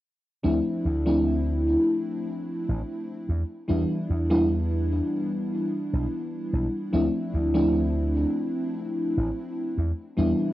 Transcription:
0.44 D2 F3 A3 C4 D4 E4
0.85 D2
1.06 F3 A3 C4 D4 E4
2.69 A1
3.29 E2
3.68 E2 E3 G3 B3 D4 E4
4.10 E2
4.30 E3 G3 B3 D4 E4
5.93 B1
6.53 B1
6.93 D2 F3 A3 C4 D4 E4
7.34 D2
7.54 F3 A3 C4 D4 E4
9.17 A1
9.78 E2
10.17 E2 E3 G3 B3 D4 E4

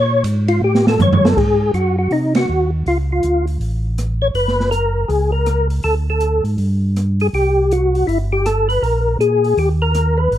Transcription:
Already playing: A#2 C#5
0.24 G#2, hi-hat pedal, ride
0.48 F4, ride
0.61 A2 G4
0.75 snare
0.87 A4, snare
0.99 F#2 C#5, floor tom, hi-hat pedal
1.13 floor tom
1.25 A4, snare
1.37 G#2 G#4, kick, crash
1.73 F#2 F#4, closed hi-hat
1.98 F#4
2.11 C3 D#4, open hi-hat
2.35 F#4, snare, ride
2.49 D#2
2.86 C#2 F4, open hi-hat
3.12 F4
3.23 D2, closed hi-hat
3.47 open hi-hat
3.60 A1, open hi-hat
3.98 cross-stick, closed hi-hat
4.22 C#5
4.34 F#1 B4, open hi-hat
4.48 snare
4.60 snare
4.71 A#4, closed hi-hat
5.08 C#2 G#4, open hi-hat
5.32 A#4
5.46 cross-stick, closed hi-hat
5.70 open hi-hat
5.83 D2 A4, open hi-hat
6.10 A4
6.20 closed hi-hat
6.44 G#2, open hi-hat
6.58 G2, open hi-hat
6.96 cross-stick, closed hi-hat
7.20 G#4, open hi-hat
7.33 C2 G4, open hi-hat
7.71 F#4, closed hi-hat
7.95 open hi-hat
8.07 G1 E4, open hi-hat
8.33 G4
8.46 A4, cross-stick, closed hi-hat
8.69 B4, open hi-hat
8.82 A#1 A#4, open hi-hat
9.18 A#2 G#4, closed hi-hat
9.44 open hi-hat
9.57 D#2 G4, open hi-hat
9.82 A#4
9.95 cross-stick, closed hi-hat
10.17 B4
10.31 G#1, open hi-hat

